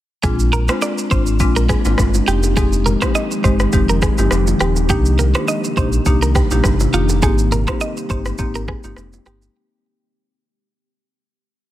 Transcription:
0.23 A#1 G#3 A#3 C4 D4 F4 G#4, kick, low conga, shaker
0.39 shaker
0.53 A#4, low conga, shaker
0.69 G#3 C4 D4 F4 C5, cross-stick, low bongo, shaker
0.82 D5, high bongo, shaker
0.98 shaker
1.11 G#1 G#3 C4 D4 F4 C5, kick, shaker
1.27 shaker
1.40 A#1 G#3 C4 D4 F4, kick, low conga, shaker
1.56 A#4, shaker
1.69 G#4, kick, cross-stick, shaker
1.85 G#1 G#3 C4 D4 F4, low bongo, shaker
1.98 G1, kick, cross-stick, high bongo, shaker
2.14 low bongo, shaker
2.27 F1 D#3 F3 G#3 C4 D#4 G4, shaker
2.43 high bongo, shaker
2.56 G#3 C4 D#4 G4 G#4, kick, low conga, shaker
2.73 shaker
2.86 A#4, low conga, shaker
3.02 G#3 C4 D#4 G4 C5, kick, cross-stick, low bongo, shaker
3.15 D#5, high bongo, shaker
3.31 shaker
3.44 G1 G#3 C4 D#4 G4 C5, kick, shaker
3.60 cross-stick, shaker
3.73 F1 G#3 C4 D#4 G4, kick, low conga, shaker
3.89 A#4, shaker
4.02 G#4, kick, cross-stick, shaker
4.18 G1 G#3 C4 D#4 G4, low bongo, shaker
4.31 F1, cross-stick, high bongo, shaker
4.47 low bongo, shaker
4.60 D#1 G#3 C4 D#4 G4, cross-stick, shaker
4.76 high bongo, shaker
4.89 C2 C3 G3 A#3 D4 D#4 G4, kick, low conga, shaker
5.05 shaker
5.19 A#4, low conga, shaker
5.35 A#3 D4 D#4 G4 C5, cross-stick, low bongo, shaker
5.48 D#5, high bongo, shaker
5.64 shaker
5.77 A#1 A#3 D4 D#4 G4 C5, kick, shaker
5.93 shaker
6.06 C2 A#3 D4 D#4 G4, kick, low conga, shaker
6.22 A#4, shaker
6.35 G4, kick, cross-stick, shaker
6.51 A#1 A#3 D4 D#4 G4, low bongo, shaker
6.64 G1, kick, cross-stick, high bongo, shaker
6.80 low bongo, shaker
6.93 F1 A#3 D4 D#4 F4 G4, shaker
7.09 high bongo, shaker
7.22 G#1 G#3 A#3 C4 D#4 G4 G#4, kick, low conga, shaker
7.38 shaker
7.52 A#4, low conga, shaker
7.67 A#3 C4 D#4 G4 C5, kick, cross-stick, low bongo, shaker
7.81 D#5, high bongo, shaker
7.97 shaker
8.10 G1 A#3 C4 D#4 G4 C5, kick, shaker
8.25 cross-stick, shaker
8.38 G#1 A#3 C4 D#4 G4, kick, low conga, shaker
8.55 A#4, shaker
8.68 G#4, kick, cross-stick
8.84 G1 A#3 C4 D#4 G4, low bongo, shaker
8.96 F1, cross-stick, high bongo, shaker
9.13 low bongo, shaker
9.26 G1 A#3 C4 D#4 G4, cross-stick, shaker
9.42 high bongo, shaker

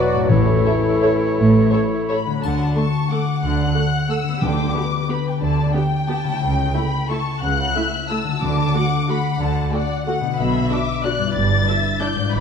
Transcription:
Already playing: E3 F#3 B3 D4 E4 F#4 B4 D5
0.13 A2
0.17 A3
0.21 C#4
0.26 A2 E4 C#5
0.30 A1 A2 E3 A4 C#5
0.64 A4 C#5 E5
1.02 A4 C#5 E5
1.38 A1 A2
1.72 A4 C#5 E5
2.09 A4 C#5 E5 B5
2.26 D3
2.30 A3
2.35 D4
2.39 F#4 A5
2.44 D2 D3 F#5, triangle
2.75 A3 A4 A5 C#6
3.11 A3 A4 F#5 D6
3.43 D2 D3 F#6
3.75 A3 A4 F#5
4.09 A3 A4 E6
4.24 D3
4.28 B3
4.33 D4
4.37 G4
4.42 D2 D3 G5 D6
4.74 B3 G4 B4
5.08 B3 G4 B5
5.28 G5
5.42 D2 D3 D5 A5
5.75 B3 G4 G5
6.08 B3 G4 A5
6.24 C#3
6.28 A3
6.33 E4
6.37 A4 G5
6.41 C#2 C#3
6.74 A3 E4 B5
7.09 A3 E4 A5 C#6
7.41 C#2 C#3 F#5 F#6
7.74 A3 E4 E5
8.09 A3 E4 A5 E6
8.24 D3
8.28 A3
8.33 F#4
8.37 D3 A4 D6
8.42 D2 D3
8.73 A3 F#4 F#5
9.08 A3 F#4 F#5 B5
9.40 D2 D3 A5
9.73 A3 F#4 D5 F#5
10.07 A3 F#4 F#5
10.20 B2
10.25 D4
10.29 F#4 B4
10.38 B1 B2 E5 B5
10.70 D4 F#4 D6
11.04 D4 F#4 D5 F#6
11.18 G2
11.22 D4
11.27 E4
11.32 G2 B4 A6
11.36 G1
11.67 D4 E4 E5
12.00 D4 E4 D5 G6
12.15 G#2
12.20 D4
12.24 F4
12.29 B4
12.33 G#1 G#2 B5

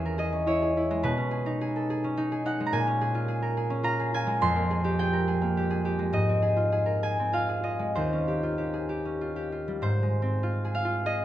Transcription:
Already playing: E2 C#4 E4 G#4 B4 C#5
0.06 A#4
0.18 G#4 D#5
0.33 C#4
0.47 E4 C#5
0.62 G#4
0.77 E4
0.91 G#3
1.03 B2 B4
1.17 C#4
1.31 G#4
1.46 D#4
1.61 G#4
1.76 A4
1.90 G#4
2.04 C#4
2.17 D#4
2.32 G#4
2.45 D#4 F#5
2.60 G#3
2.66 A#5
2.72 A#2 G#5
2.87 C#4
3.01 G#4
3.15 F4
3.28 G#4
3.42 A#4
3.57 G#4
3.70 C#4
3.83 F4 A#5
4.00 G#4
4.14 F4 G#5
4.27 G#3
4.41 F2 C6
4.56 A#3
4.71 G#4
4.84 G4
4.99 G#4 G5
5.13 A#4
5.28 G#4
5.42 A#3
5.57 G4
5.70 G#4
5.85 G4
5.99 G#3
6.13 G#2 D#5
6.29 C4
6.42 G#4
6.57 F4
6.72 G#4
6.86 A#4
7.03 G#4 G#5
7.19 C4
7.33 F4 F5
7.49 G#4
7.63 F4 D#5
7.79 G#3
7.95 D#2 C5
8.13 C#4
8.28 G4
8.43 F4
8.58 G4
8.74 G#4
8.89 G4
9.05 C#4
9.21 F4
9.36 G4
9.52 F4
9.68 G3
9.82 G#2 C5
10.03 G#3
10.22 C4
10.43 F4
10.65 G#4
10.75 F5
10.85 F4
11.06 G#4 D#5

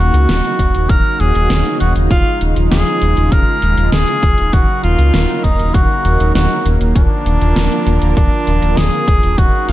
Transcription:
Already playing: C#3 F#3 A#3 D#4 F#4
0.00 D#1
0.14 C#2, closed hi-hat
0.29 D#1, snare, closed hi-hat
0.44 closed hi-hat
0.59 D#1, kick, closed hi-hat
0.75 D#1, closed hi-hat
0.89 D#1 A#4, kick, closed hi-hat
1.20 D#1 G#4, closed hi-hat
1.35 D#1, closed hi-hat
1.50 D#1, snare, closed hi-hat
1.65 closed hi-hat
1.80 D#1 F#4, closed hi-hat
1.96 D#1, closed hi-hat
2.10 D#1 F3 G#3 F4, kick, closed hi-hat
2.41 D#1, closed hi-hat
2.56 D#1, closed hi-hat
2.71 D#1 G#4, snare, closed hi-hat
2.87 closed hi-hat
3.02 D#1, closed hi-hat
3.17 D#1, closed hi-hat
3.32 D#1 A#4, kick, closed hi-hat
3.62 D#1, closed hi-hat
3.77 D#1, closed hi-hat
3.92 D#1 G#4, snare, closed hi-hat
4.08 closed hi-hat
4.23 D#1, kick, closed hi-hat
4.38 D#1, closed hi-hat
4.53 D#1 F#3 A#3 D#4 F#4 A#4, kick, closed hi-hat
4.83 D#1 F4, closed hi-hat
4.99 C#2, closed hi-hat
5.14 D#1, snare, closed hi-hat
5.29 closed hi-hat
5.44 D#1 D#4, kick, closed hi-hat
5.59 D#1, closed hi-hat
5.74 D#1 F#4, kick, closed hi-hat
6.05 D#1, closed hi-hat
6.20 D#1, closed hi-hat
6.34 D#1 F#4, snare, closed hi-hat
6.50 closed hi-hat
6.65 D#1, closed hi-hat
6.80 D#1, closed hi-hat
6.95 D#1 D3 F3 D4 F4 A#4, kick, closed hi-hat
7.26 D#1, closed hi-hat
7.41 D#1, closed hi-hat
7.56 D#1, snare, closed hi-hat
7.72 closed hi-hat
7.86 D#1, closed hi-hat
8.02 D#1, closed hi-hat
8.17 D#1 D4, kick, closed hi-hat
8.47 D#1, closed hi-hat
8.62 D#1, closed hi-hat
8.77 D#1 G#4, snare, closed hi-hat
8.93 closed hi-hat
9.08 D#1, kick, closed hi-hat
9.23 D#1, closed hi-hat
9.38 D#1 C#3 F#3 A#3 D#4 F#4 A#4, kick, closed hi-hat
9.68 D#1 F4, closed hi-hat

